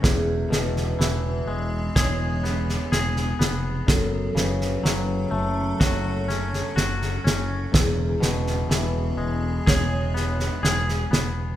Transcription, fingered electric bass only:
\new Staff \with { instrumentName = "Fingered electric bass" } { \clef bass \time 4/4 \key e \mixolydian \tempo 4 = 62 e,,8 e,,8 e,,8 e,,8 e,,4 e,,8 eis,,8 | fis,,8 fis,,8 fis,,8 fis,,8 fis,,4 fis,,8 fis,,8 | e,,8 e,,8 e,,8 e,,8 e,,4 e,,8 e,,8 | }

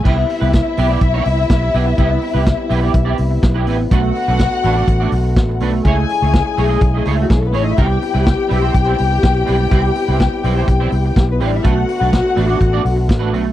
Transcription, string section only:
\new Staff \with { instrumentName = "String section" } { \time 4/4 \key c \lydian \tempo 4 = 124 <e' e''>1~ | <e' e''>2.~ <e' e''>8 r8 | <fis' fis''>2.~ <fis' fis''>8 r8 | <gis' gis''>2~ \tuplet 3/2 { <gis' gis''>4 r16 <fis fis'>16 <gis gis'>16 <a a'>16 <b b'>16 <cis' cis''>16 <dis' dis''>16 <e' e''>16 } |
<g' g''>1~ | <g' g''>2.~ \tuplet 3/2 { <g' g''>16 r16 <b b'>16 <c' c''>16 <d' d''>16 <e' e''>16 } | <fis' fis''>2.~ <fis' fis''>8 r8 | }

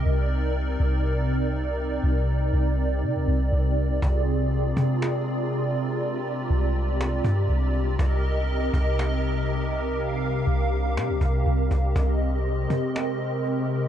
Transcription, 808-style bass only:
\new Staff \with { instrumentName = "808-style bass" } { \clef bass \time 4/4 \key c \minor \tempo 4 = 121 c,4. c,2~ c,8 | c,4 c,4 c16 c,16 c,8 c,4 | c,4. c2~ c8~ | c4 c,4. g,8 c,4 |
c,4. c,2~ c,8~ | c,4 c,4 c16 c,16 c,8 c,8 c,8 | c,4. c2~ c8 | }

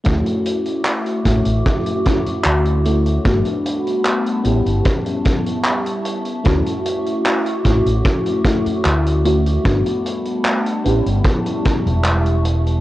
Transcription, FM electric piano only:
\new Staff \with { instrumentName = "FM electric piano" } { \time 4/4 \key d \major \tempo 4 = 75 <a cis' e' fis'>4. <a cis' e' fis'>4 <a cis' e' fis'>4 <a cis' e' fis'>8 | <a b d' fis'>4. <b cis' e' g'>2~ <b cis' e' g'>8 | <a cis' e' fis'>4. <a cis' e' fis'>4 <a cis' e' fis'>4 <a cis' e' fis'>8 | <a b d' fis'>4. <b cis' e' g'>2~ <b cis' e' g'>8 | }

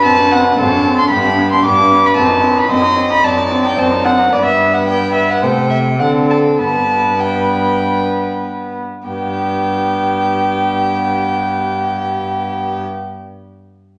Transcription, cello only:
\new Staff \with { instrumentName = "Cello" } { \clef bass \time 4/4 \key g \major \tempo 4 = 99 fis,4 fis,4 g,4 g,4 | fis,4 fis,4 fis,4 fis,4 | g,2 c4 d4 | g,2.~ g,8 r8 |
g,1~ | g,1 | }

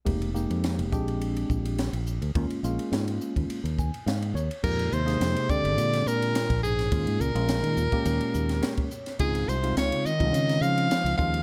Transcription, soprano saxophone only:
\new Staff \with { instrumentName = "Soprano saxophone" } { \time 4/4 \key ees \mixolydian \tempo 4 = 105 r1 | r1 | bes'8 c''4 d''4 bes'4 aes'8~ | aes'8 bes'2. r8 |
aes'8 c''8 des''8 ees''4 f''4 f''8 | }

